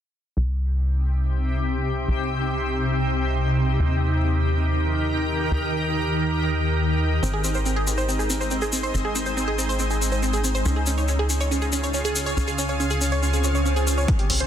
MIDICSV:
0, 0, Header, 1, 7, 480
1, 0, Start_track
1, 0, Tempo, 428571
1, 414, Time_signature, 4, 2, 24, 8
1, 16205, End_track
2, 0, Start_track
2, 0, Title_t, "Synth pluck"
2, 0, Program_c, 0, 84
2, 8094, Note_on_c, 0, 60, 78
2, 8126, Note_off_c, 0, 60, 0
2, 8215, Note_on_c, 0, 68, 73
2, 8267, Note_off_c, 0, 68, 0
2, 8336, Note_on_c, 0, 60, 73
2, 8366, Note_off_c, 0, 60, 0
2, 8456, Note_on_c, 0, 72, 74
2, 8487, Note_off_c, 0, 72, 0
2, 8576, Note_on_c, 0, 60, 80
2, 8628, Note_off_c, 0, 60, 0
2, 8695, Note_on_c, 0, 68, 98
2, 8774, Note_off_c, 0, 68, 0
2, 8814, Note_on_c, 0, 60, 74
2, 8846, Note_off_c, 0, 60, 0
2, 8934, Note_on_c, 0, 72, 97
2, 9013, Note_off_c, 0, 72, 0
2, 9055, Note_on_c, 0, 60, 80
2, 9086, Note_off_c, 0, 60, 0
2, 9174, Note_on_c, 0, 68, 74
2, 9227, Note_off_c, 0, 68, 0
2, 9294, Note_on_c, 0, 60, 72
2, 9326, Note_off_c, 0, 60, 0
2, 9414, Note_on_c, 0, 72, 71
2, 9446, Note_off_c, 0, 72, 0
2, 9534, Note_on_c, 0, 60, 82
2, 9587, Note_off_c, 0, 60, 0
2, 9653, Note_on_c, 0, 68, 100
2, 9733, Note_off_c, 0, 68, 0
2, 9774, Note_on_c, 0, 60, 74
2, 9806, Note_off_c, 0, 60, 0
2, 9893, Note_on_c, 0, 72, 98
2, 9972, Note_off_c, 0, 72, 0
2, 10014, Note_on_c, 0, 60, 79
2, 10045, Note_off_c, 0, 60, 0
2, 10134, Note_on_c, 0, 68, 75
2, 10187, Note_off_c, 0, 68, 0
2, 10254, Note_on_c, 0, 60, 74
2, 10286, Note_off_c, 0, 60, 0
2, 10374, Note_on_c, 0, 72, 73
2, 10405, Note_off_c, 0, 72, 0
2, 10494, Note_on_c, 0, 60, 80
2, 10547, Note_off_c, 0, 60, 0
2, 10614, Note_on_c, 0, 68, 102
2, 10693, Note_off_c, 0, 68, 0
2, 10734, Note_on_c, 0, 60, 75
2, 10766, Note_off_c, 0, 60, 0
2, 10854, Note_on_c, 0, 72, 96
2, 10933, Note_off_c, 0, 72, 0
2, 10973, Note_on_c, 0, 60, 78
2, 11005, Note_off_c, 0, 60, 0
2, 11094, Note_on_c, 0, 68, 73
2, 11147, Note_off_c, 0, 68, 0
2, 11214, Note_on_c, 0, 60, 71
2, 11245, Note_off_c, 0, 60, 0
2, 11334, Note_on_c, 0, 72, 73
2, 11365, Note_off_c, 0, 72, 0
2, 11453, Note_on_c, 0, 60, 82
2, 11506, Note_off_c, 0, 60, 0
2, 11573, Note_on_c, 0, 68, 97
2, 11653, Note_off_c, 0, 68, 0
2, 11693, Note_on_c, 0, 60, 74
2, 11725, Note_off_c, 0, 60, 0
2, 11814, Note_on_c, 0, 72, 99
2, 11893, Note_off_c, 0, 72, 0
2, 11933, Note_on_c, 0, 61, 80
2, 11965, Note_off_c, 0, 61, 0
2, 12054, Note_on_c, 0, 68, 76
2, 12107, Note_off_c, 0, 68, 0
2, 12175, Note_on_c, 0, 61, 75
2, 12206, Note_off_c, 0, 61, 0
2, 12294, Note_on_c, 0, 73, 75
2, 12326, Note_off_c, 0, 73, 0
2, 12414, Note_on_c, 0, 61, 82
2, 12467, Note_off_c, 0, 61, 0
2, 12534, Note_on_c, 0, 68, 97
2, 12613, Note_off_c, 0, 68, 0
2, 12654, Note_on_c, 0, 61, 72
2, 12686, Note_off_c, 0, 61, 0
2, 12774, Note_on_c, 0, 73, 102
2, 12853, Note_off_c, 0, 73, 0
2, 12894, Note_on_c, 0, 61, 80
2, 12926, Note_off_c, 0, 61, 0
2, 13013, Note_on_c, 0, 68, 75
2, 13066, Note_off_c, 0, 68, 0
2, 13134, Note_on_c, 0, 61, 75
2, 13165, Note_off_c, 0, 61, 0
2, 13255, Note_on_c, 0, 73, 72
2, 13286, Note_off_c, 0, 73, 0
2, 13374, Note_on_c, 0, 61, 85
2, 13427, Note_off_c, 0, 61, 0
2, 13493, Note_on_c, 0, 68, 102
2, 13573, Note_off_c, 0, 68, 0
2, 13613, Note_on_c, 0, 61, 73
2, 13645, Note_off_c, 0, 61, 0
2, 13734, Note_on_c, 0, 73, 104
2, 13813, Note_off_c, 0, 73, 0
2, 13854, Note_on_c, 0, 61, 78
2, 13886, Note_off_c, 0, 61, 0
2, 13974, Note_on_c, 0, 68, 74
2, 14027, Note_off_c, 0, 68, 0
2, 14093, Note_on_c, 0, 61, 74
2, 14125, Note_off_c, 0, 61, 0
2, 14213, Note_on_c, 0, 73, 76
2, 14245, Note_off_c, 0, 73, 0
2, 14334, Note_on_c, 0, 61, 81
2, 14387, Note_off_c, 0, 61, 0
2, 14454, Note_on_c, 0, 68, 100
2, 14533, Note_off_c, 0, 68, 0
2, 14574, Note_on_c, 0, 61, 72
2, 14605, Note_off_c, 0, 61, 0
2, 14693, Note_on_c, 0, 73, 98
2, 14773, Note_off_c, 0, 73, 0
2, 14814, Note_on_c, 0, 61, 79
2, 14846, Note_off_c, 0, 61, 0
2, 14934, Note_on_c, 0, 68, 76
2, 14987, Note_off_c, 0, 68, 0
2, 15055, Note_on_c, 0, 61, 76
2, 15086, Note_off_c, 0, 61, 0
2, 15175, Note_on_c, 0, 73, 74
2, 15206, Note_off_c, 0, 73, 0
2, 15294, Note_on_c, 0, 61, 83
2, 15347, Note_off_c, 0, 61, 0
2, 15414, Note_on_c, 0, 68, 97
2, 15493, Note_off_c, 0, 68, 0
2, 15534, Note_on_c, 0, 61, 76
2, 15566, Note_off_c, 0, 61, 0
2, 15654, Note_on_c, 0, 73, 98
2, 15733, Note_off_c, 0, 73, 0
2, 15773, Note_on_c, 0, 60, 80
2, 15805, Note_off_c, 0, 60, 0
2, 15894, Note_on_c, 0, 67, 75
2, 15947, Note_off_c, 0, 67, 0
2, 16014, Note_on_c, 0, 60, 74
2, 16045, Note_off_c, 0, 60, 0
2, 16133, Note_on_c, 0, 72, 74
2, 16165, Note_off_c, 0, 72, 0
2, 16205, End_track
3, 0, Start_track
3, 0, Title_t, "Ambient pad"
3, 0, Program_c, 1, 92
3, 413, Note_on_c, 1, 48, 74
3, 413, Note_on_c, 1, 60, 68
3, 414, Note_on_c, 1, 63, 69
3, 414, Note_on_c, 1, 67, 83
3, 4215, Note_off_c, 1, 48, 0
3, 4215, Note_off_c, 1, 60, 0
3, 4216, Note_off_c, 1, 67, 0
3, 4255, Note_on_c, 1, 51, 77
3, 4255, Note_on_c, 1, 67, 69
3, 4255, Note_on_c, 1, 70, 83
3, 8056, Note_off_c, 1, 51, 0
3, 8056, Note_off_c, 1, 67, 0
3, 8056, Note_off_c, 1, 70, 0
3, 8094, Note_on_c, 1, 56, 76
3, 8094, Note_on_c, 1, 60, 68
3, 11889, Note_off_c, 1, 63, 0
3, 11895, Note_off_c, 1, 56, 0
3, 11896, Note_off_c, 1, 60, 0
3, 11933, Note_on_c, 1, 65, 70
3, 11934, Note_on_c, 1, 49, 77
3, 11934, Note_on_c, 1, 61, 68
3, 11934, Note_on_c, 1, 68, 85
3, 15735, Note_off_c, 1, 65, 0
3, 15735, Note_off_c, 1, 68, 0
3, 15736, Note_off_c, 1, 49, 0
3, 15736, Note_off_c, 1, 61, 0
3, 16205, End_track
4, 0, Start_track
4, 0, Title_t, "Analog synth bass"
4, 0, Program_c, 2, 38
4, 412, Note_on_c, 2, 36, 86
4, 2309, Note_off_c, 2, 36, 0
4, 2333, Note_on_c, 2, 36, 87
4, 4229, Note_off_c, 2, 36, 0
4, 4253, Note_on_c, 2, 39, 87
4, 6150, Note_off_c, 2, 39, 0
4, 6175, Note_on_c, 2, 39, 87
4, 8070, Note_off_c, 2, 39, 0
4, 8094, Note_on_c, 2, 32, 89
4, 9990, Note_off_c, 2, 32, 0
4, 10014, Note_on_c, 2, 32, 86
4, 11910, Note_off_c, 2, 32, 0
4, 11932, Note_on_c, 2, 37, 86
4, 13829, Note_off_c, 2, 37, 0
4, 13853, Note_on_c, 2, 37, 89
4, 15750, Note_off_c, 2, 37, 0
4, 16013, Note_on_c, 2, 36, 93
4, 16158, Note_off_c, 2, 36, 0
4, 16205, End_track
5, 0, Start_track
5, 0, Title_t, "Riser"
5, 0, Program_c, 3, 103
5, 15773, Note_on_c, 3, 60, 78
5, 16205, Note_off_c, 3, 60, 0
5, 16205, End_track
6, 0, Start_track
6, 0, Title_t, "Swell"
6, 0, Program_c, 4, 103
6, 14814, Note_on_c, 4, 60, 77
6, 15774, Note_off_c, 4, 60, 0
6, 16205, End_track
7, 0, Start_track
7, 0, Title_t, "Drums"
7, 8103, Note_on_c, 9, 82, 50
7, 8215, Note_off_c, 9, 82, 0
7, 8335, Note_on_c, 9, 82, 87
7, 8447, Note_off_c, 9, 82, 0
7, 8448, Note_on_c, 9, 82, 33
7, 8560, Note_off_c, 9, 82, 0
7, 8575, Note_on_c, 9, 82, 45
7, 8687, Note_off_c, 9, 82, 0
7, 8816, Note_on_c, 9, 82, 84
7, 8928, Note_off_c, 9, 82, 0
7, 8934, Note_on_c, 9, 82, 36
7, 9046, Note_off_c, 9, 82, 0
7, 9059, Note_on_c, 9, 82, 52
7, 9171, Note_off_c, 9, 82, 0
7, 9178, Note_on_c, 9, 82, 34
7, 9290, Note_off_c, 9, 82, 0
7, 9295, Note_on_c, 9, 82, 86
7, 9407, Note_off_c, 9, 82, 0
7, 9419, Note_on_c, 9, 82, 37
7, 9527, Note_off_c, 9, 82, 0
7, 9527, Note_on_c, 9, 82, 52
7, 9639, Note_off_c, 9, 82, 0
7, 9647, Note_on_c, 9, 82, 33
7, 9759, Note_off_c, 9, 82, 0
7, 9771, Note_on_c, 9, 82, 79
7, 9883, Note_off_c, 9, 82, 0
7, 10019, Note_on_c, 9, 82, 42
7, 10131, Note_off_c, 9, 82, 0
7, 10252, Note_on_c, 9, 82, 82
7, 10364, Note_off_c, 9, 82, 0
7, 10369, Note_on_c, 9, 82, 34
7, 10481, Note_off_c, 9, 82, 0
7, 10499, Note_on_c, 9, 82, 44
7, 10611, Note_off_c, 9, 82, 0
7, 10737, Note_on_c, 9, 82, 78
7, 10849, Note_off_c, 9, 82, 0
7, 10859, Note_on_c, 9, 82, 39
7, 10966, Note_off_c, 9, 82, 0
7, 10966, Note_on_c, 9, 82, 47
7, 11078, Note_off_c, 9, 82, 0
7, 11092, Note_on_c, 9, 82, 32
7, 11204, Note_off_c, 9, 82, 0
7, 11221, Note_on_c, 9, 82, 78
7, 11330, Note_off_c, 9, 82, 0
7, 11330, Note_on_c, 9, 82, 32
7, 11442, Note_off_c, 9, 82, 0
7, 11453, Note_on_c, 9, 82, 44
7, 11565, Note_off_c, 9, 82, 0
7, 11572, Note_on_c, 9, 82, 35
7, 11684, Note_off_c, 9, 82, 0
7, 11694, Note_on_c, 9, 82, 81
7, 11806, Note_off_c, 9, 82, 0
7, 11814, Note_on_c, 9, 82, 36
7, 11926, Note_off_c, 9, 82, 0
7, 11931, Note_on_c, 9, 82, 49
7, 12043, Note_off_c, 9, 82, 0
7, 12167, Note_on_c, 9, 82, 89
7, 12279, Note_off_c, 9, 82, 0
7, 12295, Note_on_c, 9, 82, 32
7, 12407, Note_off_c, 9, 82, 0
7, 12410, Note_on_c, 9, 82, 42
7, 12522, Note_off_c, 9, 82, 0
7, 12651, Note_on_c, 9, 82, 81
7, 12763, Note_off_c, 9, 82, 0
7, 12773, Note_on_c, 9, 82, 36
7, 12885, Note_off_c, 9, 82, 0
7, 12898, Note_on_c, 9, 82, 47
7, 13010, Note_off_c, 9, 82, 0
7, 13010, Note_on_c, 9, 82, 34
7, 13122, Note_off_c, 9, 82, 0
7, 13131, Note_on_c, 9, 82, 86
7, 13243, Note_off_c, 9, 82, 0
7, 13255, Note_on_c, 9, 82, 35
7, 13367, Note_off_c, 9, 82, 0
7, 13369, Note_on_c, 9, 82, 44
7, 13481, Note_off_c, 9, 82, 0
7, 13493, Note_on_c, 9, 82, 34
7, 13605, Note_off_c, 9, 82, 0
7, 13614, Note_on_c, 9, 82, 90
7, 13726, Note_off_c, 9, 82, 0
7, 13733, Note_on_c, 9, 82, 37
7, 13845, Note_off_c, 9, 82, 0
7, 13858, Note_on_c, 9, 82, 46
7, 13970, Note_off_c, 9, 82, 0
7, 13972, Note_on_c, 9, 82, 34
7, 14084, Note_off_c, 9, 82, 0
7, 14094, Note_on_c, 9, 82, 79
7, 14203, Note_off_c, 9, 82, 0
7, 14203, Note_on_c, 9, 82, 35
7, 14315, Note_off_c, 9, 82, 0
7, 14337, Note_on_c, 9, 82, 43
7, 14449, Note_off_c, 9, 82, 0
7, 14449, Note_on_c, 9, 82, 33
7, 14561, Note_off_c, 9, 82, 0
7, 14574, Note_on_c, 9, 82, 88
7, 14686, Note_off_c, 9, 82, 0
7, 14690, Note_on_c, 9, 82, 35
7, 14802, Note_off_c, 9, 82, 0
7, 14815, Note_on_c, 9, 82, 45
7, 14927, Note_off_c, 9, 82, 0
7, 14933, Note_on_c, 9, 82, 36
7, 15045, Note_off_c, 9, 82, 0
7, 15051, Note_on_c, 9, 82, 83
7, 15163, Note_off_c, 9, 82, 0
7, 15174, Note_on_c, 9, 82, 36
7, 15286, Note_off_c, 9, 82, 0
7, 15297, Note_on_c, 9, 82, 51
7, 15409, Note_off_c, 9, 82, 0
7, 15415, Note_on_c, 9, 82, 31
7, 15527, Note_off_c, 9, 82, 0
7, 15538, Note_on_c, 9, 82, 91
7, 15650, Note_off_c, 9, 82, 0
7, 15655, Note_on_c, 9, 82, 39
7, 15767, Note_off_c, 9, 82, 0
7, 15773, Note_on_c, 9, 36, 111
7, 15773, Note_on_c, 9, 42, 88
7, 15885, Note_off_c, 9, 36, 0
7, 15885, Note_off_c, 9, 42, 0
7, 15893, Note_on_c, 9, 42, 39
7, 16005, Note_off_c, 9, 42, 0
7, 16014, Note_on_c, 9, 46, 105
7, 16126, Note_off_c, 9, 46, 0
7, 16133, Note_on_c, 9, 42, 39
7, 16205, Note_off_c, 9, 42, 0
7, 16205, End_track
0, 0, End_of_file